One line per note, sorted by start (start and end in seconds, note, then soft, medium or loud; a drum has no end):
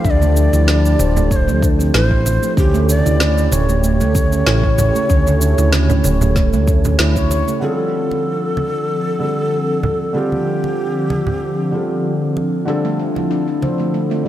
0.00 2.53 F3 medium
0.00 2.54 G4 medium
0.05 0.49 D2 medium
0.05 0.20 D4 loud
0.05 0.11 E5 loud
0.05 kick loud
0.05 shaker soft
0.10 1.34 D5 loud
0.21 0.35 A3 medium
0.21 high conga medium
0.21 shaker soft
0.36 0.51 D4 medium
0.36 shaker medium
0.53 0.96 D2 medium
0.53 0.67 E4 medium
0.53 muted conga medium
0.53 shaker soft
0.68 0.83 D4 loud
0.68 snare medium
0.68 shaker soft
0.85 0.99 D4 medium
0.85 shaker soft
0.99 1.50 D1 loud
0.99 1.15 C5 medium
0.99 muted conga medium
0.99 high conga medium
0.99 shaker medium
1.16 1.25 A3 medium
1.16 low conga medium
1.16 shaker soft
1.31 1.46 A3 medium
1.31 1.37 C#5 medium
1.31 kick medium
1.31 shaker soft
1.36 1.68 C5 medium
1.48 1.91 D2 medium
1.48 1.62 A3 loud
1.48 shaker soft
1.62 1.78 D4 medium
1.62 kick medium
1.62 shaker medium
1.79 1.92 C4 medium
1.79 shaker soft
1.94 2.38 A1 loud
1.94 2.10 E4 medium
1.94 2.54 C5 loud
1.94 snare medium
1.94 shaker soft
2.11 2.24 C5 medium
2.11 kick medium
2.26 2.42 C5 medium
2.26 muted conga medium
2.26 shaker medium
2.43 2.51 A3 medium
2.43 shaker soft
2.57 3.01 D2 loud
2.57 7.59 C#3 medium
2.57 7.59 A3 medium
2.57 2.72 C#4 loud
2.57 7.59 G4 medium
2.57 2.87 G4 loud
2.57 kick loud
2.57 shaker soft
2.74 2.88 A3 loud
2.74 shaker soft
2.89 3.04 C#4 medium
2.89 3.54 D5 loud
2.89 shaker medium
3.06 3.49 D2 medium
3.06 3.20 E4 medium
3.06 muted conga medium
3.06 high conga soft
3.06 shaker soft
3.20 3.36 C#4 loud
3.20 snare medium
3.20 shaker soft
3.37 3.51 C#4 medium
3.37 shaker soft
3.51 4.02 D1 loud
3.51 3.68 C#5 medium
3.51 7.00 C#5 medium
3.51 muted conga medium
3.51 high conga medium
3.51 shaker medium
3.69 3.77 A3 medium
3.69 shaker soft
3.84 3.99 A3 medium
3.84 shaker soft
4.01 4.43 D2 medium
4.01 4.14 A3 medium
4.01 shaker soft
4.15 4.30 C#4 medium
4.15 kick medium
4.15 shaker medium
4.32 4.45 C#4 medium
4.32 shaker soft
4.47 4.91 A1 loud
4.47 4.63 E4 medium
4.47 snare medium
4.47 shaker soft
4.64 4.77 C#5 medium
4.64 kick medium
4.78 4.95 C#5 medium
4.78 high conga medium
4.78 low conga medium
4.78 shaker medium
4.96 5.04 A3 medium
4.96 shaker soft
5.10 5.54 D2 medium
5.10 5.25 C#4 loud
5.10 kick loud
5.10 shaker soft
5.27 5.41 A3 loud
5.27 high conga medium
5.27 shaker soft
5.41 5.57 C#4 medium
5.41 shaker medium
5.58 6.01 D2 medium
5.58 5.72 E4 medium
5.58 muted conga medium
5.58 high conga soft
5.58 shaker soft
5.73 5.89 C#4 loud
5.73 snare medium
5.73 shaker soft
5.90 6.04 C#4 medium
5.90 low conga medium
5.90 shaker soft
6.04 6.55 D1 medium
6.04 6.21 C#5 medium
6.04 muted conga medium
6.04 high conga medium
6.04 shaker medium
6.21 6.30 A3 medium
6.21 low conga medium
6.21 shaker soft
6.36 6.52 A3 medium
6.36 kick medium
6.36 snare soft
6.36 shaker soft
6.53 6.96 D2 medium
6.53 6.67 A3 medium
6.53 shaker soft
6.68 6.83 C#4 medium
6.68 kick loud
6.68 shaker medium
6.85 6.98 C#4 medium
6.85 low conga medium
6.85 shaker soft
6.99 7.44 D2 medium
6.99 7.15 E4 medium
6.99 snare loud
6.99 shaker soft
7.16 7.29 C#5 medium
7.16 kick medium
7.16 high conga soft
7.16 shaker soft
7.31 7.47 C#5 medium
7.31 muted conga medium
7.31 shaker medium
7.48 7.56 A3 medium
7.48 shaker soft
7.60 9.16 D3 medium
7.60 14.28 D3 medium
7.60 14.28 F3 medium
7.60 9.16 G3 medium
7.60 9.17 C4 medium
7.60 14.28 C4 medium
7.60 9.17 F4 medium
7.60 7.76 G#4 loud
7.60 9.18 A4 medium
7.76 10.15 A4 loud
8.11 muted conga medium
8.11 high conga soft
8.57 muted conga medium
8.57 high conga medium
9.19 10.11 D3 medium
9.19 10.11 G3 medium
9.19 10.12 C4 medium
9.19 10.12 F4 medium
9.23 10.13 A4 medium
9.83 high conga medium
9.83 low conga medium
10.13 11.68 D3 medium
10.13 11.69 G3 medium
10.13 11.69 C4 medium
10.13 11.70 F4 medium
10.13 10.19 A4 medium
10.13 11.70 A4 medium
10.18 12.36 G4 loud
10.32 high conga medium
10.64 muted conga soft
11.10 muted conga medium
11.10 high conga medium
11.27 low conga medium
11.71 12.63 D3 medium
11.71 12.64 G3 medium
11.71 12.64 C4 medium
11.71 12.65 F4 medium
11.75 12.65 A4 medium
12.37 muted conga medium
12.65 14.21 D3 medium
12.65 14.22 F3 medium
12.65 14.21 G3 medium
12.65 14.22 C4 medium
12.65 12.83 D4 loud
12.69 14.23 A4 loud
12.85 12.99 A3 medium
12.99 13.15 D4 medium
13.16 13.30 E4 medium
13.16 muted conga soft
13.16 high conga soft
13.31 13.46 D4 medium
13.48 13.62 D4 medium
13.62 13.79 C5 medium
13.62 muted conga medium
13.62 high conga medium
13.80 13.88 A3 medium
13.94 14.09 A3 medium
14.11 14.25 A3 medium
14.23 14.28 D3 medium
14.23 14.28 G3 medium